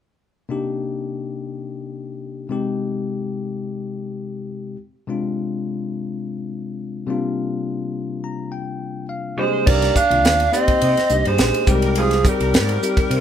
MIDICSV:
0, 0, Header, 1, 7, 480
1, 0, Start_track
1, 0, Key_signature, -3, "minor"
1, 0, Tempo, 573066
1, 416, Time_signature, 4, 2, 24, 8
1, 11060, End_track
2, 0, Start_track
2, 0, Title_t, "Lead electric guitar"
2, 0, Program_c, 0, 29
2, 7866, Note_on_c, 0, 72, 75
2, 8087, Note_off_c, 0, 72, 0
2, 8096, Note_on_c, 0, 74, 82
2, 8342, Note_off_c, 0, 74, 0
2, 8346, Note_on_c, 0, 77, 85
2, 8826, Note_off_c, 0, 77, 0
2, 8829, Note_on_c, 0, 75, 83
2, 9442, Note_on_c, 0, 72, 83
2, 9449, Note_off_c, 0, 75, 0
2, 9763, Note_off_c, 0, 72, 0
2, 9796, Note_on_c, 0, 70, 68
2, 10032, Note_on_c, 0, 68, 76
2, 10034, Note_off_c, 0, 70, 0
2, 10249, Note_off_c, 0, 68, 0
2, 10271, Note_on_c, 0, 70, 70
2, 11060, Note_off_c, 0, 70, 0
2, 11060, End_track
3, 0, Start_track
3, 0, Title_t, "Tine electric piano"
3, 0, Program_c, 1, 4
3, 410, Note_on_c, 1, 48, 58
3, 410, Note_on_c, 1, 58, 55
3, 419, Note_on_c, 1, 62, 53
3, 423, Note_on_c, 1, 63, 57
3, 431, Note_on_c, 1, 67, 65
3, 2062, Note_off_c, 1, 48, 0
3, 2062, Note_off_c, 1, 58, 0
3, 2066, Note_off_c, 1, 62, 0
3, 2068, Note_off_c, 1, 63, 0
3, 2072, Note_off_c, 1, 67, 0
3, 2085, Note_on_c, 1, 48, 60
3, 2088, Note_on_c, 1, 56, 56
3, 2099, Note_on_c, 1, 60, 55
3, 2102, Note_on_c, 1, 63, 53
3, 2111, Note_on_c, 1, 67, 68
3, 3979, Note_off_c, 1, 48, 0
3, 3981, Note_off_c, 1, 56, 0
3, 3986, Note_off_c, 1, 60, 0
3, 3988, Note_off_c, 1, 63, 0
3, 3992, Note_off_c, 1, 67, 0
3, 4249, Note_on_c, 1, 48, 62
3, 4254, Note_on_c, 1, 56, 55
3, 4261, Note_on_c, 1, 60, 56
3, 4268, Note_on_c, 1, 62, 53
3, 4273, Note_on_c, 1, 65, 64
3, 5901, Note_off_c, 1, 48, 0
3, 5904, Note_off_c, 1, 56, 0
3, 5907, Note_off_c, 1, 60, 0
3, 5911, Note_off_c, 1, 62, 0
3, 5913, Note_off_c, 1, 65, 0
3, 5918, Note_on_c, 1, 48, 64
3, 5922, Note_on_c, 1, 55, 58
3, 5929, Note_on_c, 1, 58, 60
3, 5936, Note_on_c, 1, 60, 56
3, 5944, Note_on_c, 1, 62, 59
3, 5949, Note_on_c, 1, 65, 75
3, 6901, Note_on_c, 1, 82, 50
3, 7124, Note_off_c, 1, 82, 0
3, 7134, Note_on_c, 1, 79, 60
3, 7584, Note_off_c, 1, 79, 0
3, 7615, Note_on_c, 1, 77, 62
3, 7816, Note_off_c, 1, 48, 0
3, 7818, Note_off_c, 1, 55, 0
3, 7821, Note_off_c, 1, 58, 0
3, 7825, Note_off_c, 1, 60, 0
3, 7829, Note_off_c, 1, 62, 0
3, 7831, Note_off_c, 1, 65, 0
3, 7841, Note_off_c, 1, 77, 0
3, 7849, Note_on_c, 1, 48, 50
3, 7858, Note_on_c, 1, 55, 46
3, 7858, Note_on_c, 1, 58, 44
3, 7860, Note_on_c, 1, 62, 42
3, 7861, Note_on_c, 1, 60, 45
3, 7861, Note_on_c, 1, 75, 59
3, 7866, Note_on_c, 1, 67, 51
3, 8080, Note_off_c, 1, 58, 0
3, 8084, Note_off_c, 1, 62, 0
3, 8084, Note_off_c, 1, 75, 0
3, 8090, Note_off_c, 1, 67, 0
3, 8090, Note_on_c, 1, 58, 63
3, 8094, Note_off_c, 1, 48, 0
3, 8094, Note_on_c, 1, 62, 60
3, 8097, Note_on_c, 1, 63, 60
3, 8099, Note_off_c, 1, 55, 0
3, 8100, Note_off_c, 1, 60, 0
3, 8100, Note_on_c, 1, 67, 74
3, 8359, Note_off_c, 1, 58, 0
3, 8361, Note_off_c, 1, 62, 0
3, 8362, Note_off_c, 1, 63, 0
3, 8363, Note_off_c, 1, 67, 0
3, 8462, Note_on_c, 1, 58, 67
3, 8467, Note_on_c, 1, 62, 63
3, 8471, Note_on_c, 1, 51, 62
3, 8473, Note_on_c, 1, 65, 71
3, 8725, Note_off_c, 1, 58, 0
3, 8728, Note_off_c, 1, 62, 0
3, 8730, Note_off_c, 1, 51, 0
3, 8731, Note_off_c, 1, 65, 0
3, 8813, Note_on_c, 1, 58, 55
3, 8817, Note_on_c, 1, 60, 54
3, 8818, Note_on_c, 1, 63, 58
3, 8824, Note_on_c, 1, 67, 66
3, 9172, Note_off_c, 1, 58, 0
3, 9174, Note_off_c, 1, 60, 0
3, 9175, Note_off_c, 1, 63, 0
3, 9178, Note_off_c, 1, 67, 0
3, 9295, Note_on_c, 1, 58, 62
3, 9300, Note_on_c, 1, 62, 58
3, 9302, Note_on_c, 1, 63, 56
3, 9309, Note_on_c, 1, 67, 70
3, 9769, Note_off_c, 1, 63, 0
3, 9772, Note_on_c, 1, 56, 66
3, 9775, Note_on_c, 1, 60, 64
3, 9777, Note_off_c, 1, 58, 0
3, 9777, Note_off_c, 1, 67, 0
3, 9779, Note_off_c, 1, 62, 0
3, 9779, Note_on_c, 1, 63, 60
3, 9787, Note_on_c, 1, 67, 80
3, 10165, Note_off_c, 1, 56, 0
3, 10166, Note_off_c, 1, 60, 0
3, 10168, Note_off_c, 1, 63, 0
3, 10172, Note_off_c, 1, 67, 0
3, 10250, Note_on_c, 1, 55, 62
3, 10253, Note_on_c, 1, 60, 56
3, 10255, Note_on_c, 1, 63, 55
3, 10258, Note_on_c, 1, 67, 66
3, 10610, Note_off_c, 1, 55, 0
3, 10612, Note_off_c, 1, 60, 0
3, 10613, Note_off_c, 1, 63, 0
3, 10614, Note_off_c, 1, 67, 0
3, 10732, Note_on_c, 1, 55, 60
3, 10739, Note_on_c, 1, 60, 58
3, 10744, Note_on_c, 1, 63, 53
3, 10744, Note_on_c, 1, 67, 72
3, 11060, Note_off_c, 1, 55, 0
3, 11060, Note_off_c, 1, 60, 0
3, 11060, Note_off_c, 1, 63, 0
3, 11060, Note_off_c, 1, 67, 0
3, 11060, End_track
4, 0, Start_track
4, 0, Title_t, "Tenor saxophone"
4, 0, Program_c, 2, 66
4, 7871, Note_on_c, 2, 56, 67
4, 8089, Note_off_c, 2, 56, 0
4, 8112, Note_on_c, 2, 58, 73
4, 8330, Note_off_c, 2, 58, 0
4, 8344, Note_on_c, 2, 62, 82
4, 8788, Note_off_c, 2, 62, 0
4, 8817, Note_on_c, 2, 60, 78
4, 9391, Note_off_c, 2, 60, 0
4, 9433, Note_on_c, 2, 56, 64
4, 9758, Note_off_c, 2, 56, 0
4, 9794, Note_on_c, 2, 55, 64
4, 10010, Note_off_c, 2, 55, 0
4, 10033, Note_on_c, 2, 53, 62
4, 10250, Note_off_c, 2, 53, 0
4, 10285, Note_on_c, 2, 55, 65
4, 11060, Note_off_c, 2, 55, 0
4, 11060, End_track
5, 0, Start_track
5, 0, Title_t, "Fretless electric bass"
5, 0, Program_c, 3, 35
5, 8100, Note_on_c, 3, 36, 90
5, 8290, Note_off_c, 3, 36, 0
5, 8464, Note_on_c, 3, 36, 67
5, 8585, Note_off_c, 3, 36, 0
5, 8585, Note_on_c, 3, 39, 81
5, 8773, Note_off_c, 3, 39, 0
5, 9064, Note_on_c, 3, 48, 92
5, 9162, Note_off_c, 3, 48, 0
5, 9299, Note_on_c, 3, 36, 80
5, 9399, Note_off_c, 3, 36, 0
5, 9432, Note_on_c, 3, 43, 74
5, 9520, Note_off_c, 3, 43, 0
5, 9543, Note_on_c, 3, 34, 75
5, 9642, Note_off_c, 3, 34, 0
5, 9780, Note_on_c, 3, 36, 83
5, 10259, Note_off_c, 3, 36, 0
5, 10391, Note_on_c, 3, 36, 64
5, 10503, Note_on_c, 3, 44, 80
5, 10515, Note_off_c, 3, 36, 0
5, 10691, Note_off_c, 3, 44, 0
5, 10975, Note_on_c, 3, 48, 91
5, 11060, Note_off_c, 3, 48, 0
5, 11060, End_track
6, 0, Start_track
6, 0, Title_t, "Muted fretless electric bass strokes"
6, 9193, Note_on_c, 9, 29, 34
6, 9277, Note_off_c, 9, 29, 0
6, 11060, End_track
7, 0, Start_track
7, 0, Title_t, "Drums"
7, 8099, Note_on_c, 9, 49, 83
7, 8101, Note_on_c, 9, 36, 97
7, 8182, Note_off_c, 9, 49, 0
7, 8185, Note_off_c, 9, 36, 0
7, 8226, Note_on_c, 9, 51, 55
7, 8234, Note_on_c, 9, 38, 26
7, 8310, Note_off_c, 9, 51, 0
7, 8318, Note_off_c, 9, 38, 0
7, 8340, Note_on_c, 9, 36, 66
7, 8340, Note_on_c, 9, 44, 73
7, 8424, Note_off_c, 9, 36, 0
7, 8424, Note_off_c, 9, 44, 0
7, 8470, Note_on_c, 9, 51, 52
7, 8553, Note_off_c, 9, 51, 0
7, 8584, Note_on_c, 9, 51, 74
7, 8592, Note_on_c, 9, 38, 100
7, 8668, Note_off_c, 9, 51, 0
7, 8675, Note_off_c, 9, 38, 0
7, 8709, Note_on_c, 9, 51, 59
7, 8793, Note_off_c, 9, 51, 0
7, 8821, Note_on_c, 9, 44, 75
7, 8905, Note_off_c, 9, 44, 0
7, 8944, Note_on_c, 9, 51, 55
7, 8946, Note_on_c, 9, 36, 73
7, 9028, Note_off_c, 9, 51, 0
7, 9030, Note_off_c, 9, 36, 0
7, 9059, Note_on_c, 9, 51, 75
7, 9142, Note_off_c, 9, 51, 0
7, 9191, Note_on_c, 9, 51, 58
7, 9199, Note_on_c, 9, 38, 30
7, 9275, Note_off_c, 9, 51, 0
7, 9282, Note_off_c, 9, 38, 0
7, 9294, Note_on_c, 9, 44, 79
7, 9377, Note_off_c, 9, 44, 0
7, 9426, Note_on_c, 9, 51, 55
7, 9509, Note_off_c, 9, 51, 0
7, 9534, Note_on_c, 9, 51, 75
7, 9542, Note_on_c, 9, 38, 89
7, 9618, Note_off_c, 9, 51, 0
7, 9626, Note_off_c, 9, 38, 0
7, 9668, Note_on_c, 9, 51, 57
7, 9752, Note_off_c, 9, 51, 0
7, 9772, Note_on_c, 9, 44, 65
7, 9778, Note_on_c, 9, 36, 89
7, 9855, Note_off_c, 9, 44, 0
7, 9861, Note_off_c, 9, 36, 0
7, 9902, Note_on_c, 9, 51, 54
7, 9986, Note_off_c, 9, 51, 0
7, 10013, Note_on_c, 9, 51, 75
7, 10097, Note_off_c, 9, 51, 0
7, 10142, Note_on_c, 9, 51, 52
7, 10150, Note_on_c, 9, 38, 27
7, 10226, Note_off_c, 9, 51, 0
7, 10234, Note_off_c, 9, 38, 0
7, 10257, Note_on_c, 9, 36, 72
7, 10257, Note_on_c, 9, 44, 76
7, 10341, Note_off_c, 9, 36, 0
7, 10341, Note_off_c, 9, 44, 0
7, 10390, Note_on_c, 9, 51, 55
7, 10474, Note_off_c, 9, 51, 0
7, 10503, Note_on_c, 9, 51, 72
7, 10511, Note_on_c, 9, 38, 97
7, 10587, Note_off_c, 9, 51, 0
7, 10595, Note_off_c, 9, 38, 0
7, 10628, Note_on_c, 9, 51, 59
7, 10711, Note_off_c, 9, 51, 0
7, 10744, Note_on_c, 9, 44, 77
7, 10827, Note_off_c, 9, 44, 0
7, 10864, Note_on_c, 9, 36, 75
7, 10865, Note_on_c, 9, 51, 51
7, 10948, Note_off_c, 9, 36, 0
7, 10949, Note_off_c, 9, 51, 0
7, 10980, Note_on_c, 9, 51, 70
7, 11060, Note_off_c, 9, 51, 0
7, 11060, End_track
0, 0, End_of_file